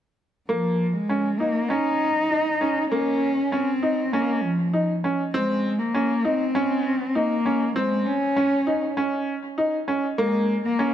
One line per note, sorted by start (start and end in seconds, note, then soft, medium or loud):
0.49 0.95 F3 medium
0.49 0.84 A#3 medium
0.94 1.40 G#3 medium
1.09 1.27 C#4 medium
1.39 1.70 A#3 medium
1.39 1.58 D#4 medium
1.69 2.05 C#4 medium
1.69 2.90 D#4 loud
2.31 2.48 D#4 medium
2.61 2.79 C#4 medium
2.90 3.27 A#3 medium
2.90 3.53 C#4 medium
3.52 4.14 C4 medium
3.52 3.70 C#4 medium
3.83 4.00 D#4 medium
4.12 4.44 A#3 medium
4.12 4.48 C#4 medium
4.42 5.03 F3 medium
4.74 4.91 D#4 medium
5.04 5.22 C#4 medium
5.33 5.80 G#3 medium
5.33 5.69 C4 medium
5.79 6.26 A#3 medium
5.94 6.12 C#4 medium
6.24 7.17 C4 medium
6.24 6.42 D#4 medium
6.55 6.90 C#4 medium
7.15 7.75 A#3 medium
7.15 7.33 D#4 medium
7.46 7.63 C#4 medium
7.76 8.08 G#3 medium
7.76 8.11 C4 medium
8.06 8.97 C#4 loud
8.36 8.54 C#4 medium
8.67 8.85 D#4 medium
8.97 9.32 C#4 medium
9.58 9.75 D#4 medium
9.88 10.06 C#4 medium
10.18 10.62 G#3 medium
10.18 10.54 A#3 medium
10.64 10.94 A#3 medium
10.79 10.94 C#4 medium